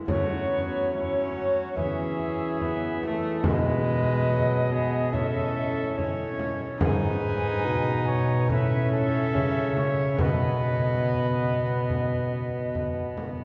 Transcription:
Already playing: harp E3 G#3 B3 E4
0.05 bassoon F#3, harp F#3 A3 C#4, viola A3, cornet F#4, frame drum
0.10 recorder C#5
0.50 viola B3
0.92 viola C#4, cornet E4, recorder C#5
1.36 cornet F#4
1.75 harp E3 B3 E4, bassoon E3, viola C#4, cornet G#4, recorder E5, frame drum
2.61 viola B3, recorder E5, frame drum
3.03 viola A3, cornet A4, frame drum
3.43 bassoon B2, harp B2 B3 D#4, viola G#3, cornet B4, recorder D#5, frame drum
4.30 viola F#3
4.72 viola B3, cornet G#4
5.09 harp A2 A3 C#4 E4, recorder E5
5.14 bassoon A2, viola C#4, cornet A4, frame drum
5.54 recorder E5
5.97 viola C#4, recorder C#5, frame drum
6.39 frame drum
6.78 bassoon G#2, harp G#2 G#3 D#4 G#4, viola D#4, cornet B4, frame drum
6.83 recorder G#5
7.65 bassoon B2, harp B2
8.08 cornet C#5
8.46 bassoon A2, harp A2 A3 C#4 E4, viola C#4, frame drum
8.50 cornet B4, recorder E5
8.92 cornet A4
9.34 harp C#3, bassoon C#3, frame drum
9.77 cornet C#5, frame drum
10.16 bassoon B2, harp B2 B3 D#4, viola B3, recorder D#5, frame drum
10.21 cornet B4
11.90 frame drum
12.75 frame drum
13.17 frame drum

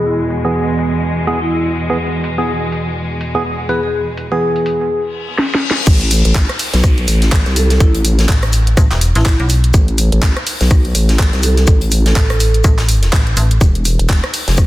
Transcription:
Already playing: string section E2 B2 G#3
0.06 vibraphone E4
0.30 open hi-hat
0.45 synth stab E3 B3 G#4
0.79 open hi-hat
1.27 synth stab E3 B3 G#4, open hi-hat
1.41 vibraphone E4
1.51 vibraphone E4
1.76 open hi-hat
1.90 synth stab E3 B3 G#4
2.24 open hi-hat
2.38 synth stab E3 B3 G#4
2.72 open hi-hat
3.21 open hi-hat
3.35 synth stab E3 B3 G#4
3.69 synth stab E3 B3 B4, vibraphone G#4, open hi-hat
3.83 vibraphone G#4
4.17 open hi-hat
4.32 synth stab E3 B3 G#4, vibraphone G#4
4.56 open hi-hat
4.66 open hi-hat
4.90 reverse cymbal
5.38 snare
5.55 snare
5.71 snare
5.87 wobble bass A1, kick, closed hi-hat, crash, downlifter, shaker
6.01 closed hi-hat
6.11 open hi-hat, shaker
6.25 wobble bass A1, closed hi-hat
6.35 kick, snare, clap, closed hi-hat, shaker
6.49 cross-stick, closed hi-hat
6.59 open hi-hat
6.73 wobble bass B1, snare, closed hi-hat
6.84 kick, cross-stick, closed hi-hat, shaker
6.98 closed hi-hat
7.07 wobble bass A1, open hi-hat, shaker
7.22 snare, closed hi-hat
7.32 kick, cross-stick, snare, clap, closed hi-hat, shaker
7.45 wobble bass C2, snare, closed hi-hat
7.56 vibraphone A4, open hi-hat, shaker
7.70 vibraphone A4, snare, closed hi-hat
7.80 wobble bass A1, vibraphone E4, kick, closed hi-hat, shaker
7.95 closed hi-hat
8.05 open hi-hat, shaker
8.19 snare, closed hi-hat
8.29 fm bass A1, kick, snare, clap, closed hi-hat, shaker
8.42 cross-stick, closed hi-hat
8.53 open hi-hat, shaker
8.67 closed hi-hat
8.77 fm bass A1, kick, cross-stick, closed hi-hat, shaker
8.91 fm bass E1, snare, clap, closed hi-hat
9.01 open hi-hat, shaker
9.15 fm bass A1, vibraphone E4, snare, closed hi-hat
9.25 kick, cross-stick, snare, clap, closed hi-hat, shaker
9.40 fm bass B1, closed hi-hat
9.49 open hi-hat, shaker
9.64 closed hi-hat
9.74 wobble bass A1, kick, closed hi-hat, shaker
9.88 closed hi-hat
9.98 open hi-hat, shaker
10.12 wobble bass A1, closed hi-hat
10.22 kick, snare, clap, closed hi-hat, shaker
10.37 cross-stick, closed hi-hat
10.46 open hi-hat
10.61 wobble bass B1, snare, closed hi-hat
10.71 kick, cross-stick, closed hi-hat, shaker
10.85 closed hi-hat
10.95 wobble bass A1, open hi-hat, shaker
11.09 snare, closed hi-hat
11.19 kick, cross-stick, snare, clap, closed hi-hat, shaker
11.33 wobble bass C2, snare, closed hi-hat
11.42 vibraphone A4, open hi-hat, shaker
11.57 vibraphone A4, snare, closed hi-hat
11.67 wobble bass A1, kick, closed hi-hat, shaker
11.81 closed hi-hat
11.91 open hi-hat, shaker
12.06 vibraphone A4, snare, closed hi-hat
12.16 fm bass A1, kick, snare, clap, closed hi-hat, shaker
12.30 cross-stick, closed hi-hat
12.40 open hi-hat, shaker
12.54 closed hi-hat
12.64 fm bass A1, kick, cross-stick, closed hi-hat, shaker
12.78 snare, clap, closed hi-hat
12.89 open hi-hat, shaker
13.02 snare, closed hi-hat
13.13 fm bass A1, kick, cross-stick, snare, clap, closed hi-hat, shaker
13.27 closed hi-hat
13.36 fm bass A1, open hi-hat, shaker
13.51 closed hi-hat
13.61 wobble bass E1, kick, closed hi-hat, shaker
13.75 closed hi-hat
13.85 open hi-hat, shaker
13.99 wobble bass E1, closed hi-hat
14.09 kick, snare, clap, closed hi-hat, shaker
14.24 cross-stick, closed hi-hat
14.33 open hi-hat
14.48 wobble bass F1, snare, closed hi-hat
14.58 kick, cross-stick, closed hi-hat, shaker

